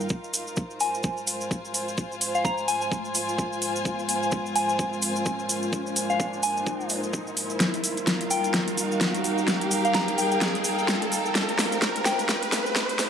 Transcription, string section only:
0.00 0.75 D#4 medium
0.00 1.74 A#4 medium
0.00 0.94 F5 medium
0.00 0.10 G5 medium
0.10 8.50 F4 medium
0.57 8.23 C5 medium
1.33 7.60 G#5 medium
7.60 13.10 D#4 medium
8.07 13.10 A#4 medium
8.07 13.10 F5 medium
8.99 13.10 G5 medium

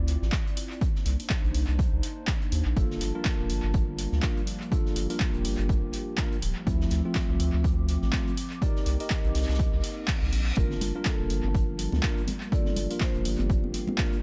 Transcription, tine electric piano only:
2.76 3.12 A#3 medium
2.76 3.12 D4 medium
2.76 3.12 F4 medium
2.76 3.12 A4 medium
3.15 4.20 A#3 medium
3.15 4.20 D4 medium
3.15 4.20 F4 medium
3.15 4.21 A#4 medium
4.23 4.40 A#3 medium
4.23 4.40 D4 medium
4.23 4.40 F4 medium
4.23 4.40 A#4 medium
4.72 5.07 A#3 medium
4.72 5.07 D4 medium
4.72 5.07 F4 medium
4.72 5.07 A4 loud
5.10 6.15 A#3 medium
5.10 6.15 D4 medium
5.10 6.16 F4 medium
5.10 6.16 A#4 medium
6.18 6.35 A#3 medium
6.18 6.35 D4 medium
6.18 6.35 F4 medium
6.18 6.36 A#4 medium
6.66 7.02 F3 medium
6.66 7.02 A3 medium
6.66 7.02 C4 medium
6.66 7.02 E4 loud
7.05 8.10 F3 medium
7.05 8.11 A3 medium
7.05 8.11 C4 medium
7.05 8.11 F4 medium
8.13 8.30 F3 medium
8.13 8.31 A3 medium
8.13 8.31 C4 medium
8.13 8.31 F4 medium
8.62 8.97 D#4 medium
8.62 8.97 G4 medium
8.62 8.97 A#4 medium
8.62 8.97 D5 loud
9.00 10.06 D#4 medium
9.00 10.06 G4 medium
9.00 10.06 A#4 medium
9.00 10.06 D#5 medium
10.57 10.92 A#3 medium
10.57 10.92 D4 medium
10.57 10.92 F4 medium
10.57 10.92 A#4 loud
10.95 12.01 A#3 medium
10.95 12.01 D4 medium
10.95 12.01 F4 medium
10.95 12.01 A#4 medium
12.03 12.21 A#3 medium
12.03 12.21 D4 medium
12.03 12.21 F4 medium
12.03 12.21 A#4 medium
12.52 12.87 A#3 medium
12.52 12.87 D4 medium
12.52 12.87 F4 medium
12.52 12.87 A4 medium
12.90 13.96 A#3 medium
12.90 13.96 D4 medium
12.90 13.96 F4 medium
12.90 13.96 A#4 medium
13.98 14.16 A#3 medium
13.98 14.16 D4 medium
13.98 14.16 F4 medium
13.98 14.16 A#4 medium

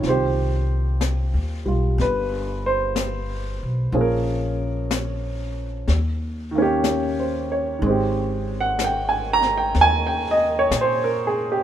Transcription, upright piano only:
0.00 3.93 A#2 soft
0.00 3.91 D#3 soft
0.06 3.95 C4 soft
0.06 3.97 G4 medium
0.06 0.71 C5 medium
1.66 3.93 G3 soft
1.66 3.95 F4 soft
2.01 2.65 B4 medium
2.66 3.90 C5 medium
3.93 5.88 F3 medium
3.93 5.88 A#3 soft
3.93 5.88 C#4 soft
3.93 5.88 G#4 medium
4.01 4.38 A#4 medium
6.51 7.77 D#3 medium
6.55 7.82 A#3 medium
6.55 7.84 C#4 medium
6.62 7.86 G4 medium
6.88 7.49 A#4 soft
7.20 7.69 C5 soft
7.52 8.01 C#5 medium
7.79 11.63 D#3 medium
7.79 11.63 G#3 medium
7.86 11.63 C4 medium
7.86 11.50 G4 medium
8.61 8.77 F#5 medium
8.84 9.13 G5 medium
9.09 9.42 G#5 medium
9.33 9.54 A#5 loud
9.58 9.74 G5 medium
9.81 10.10 G#5 loud
10.07 10.39 G5 medium
10.31 10.51 D#5 medium
10.59 10.73 C#5 medium
10.81 11.09 C5 medium
11.04 11.37 A#4 medium
11.27 11.48 G#4 medium
11.52 11.63 G4 medium

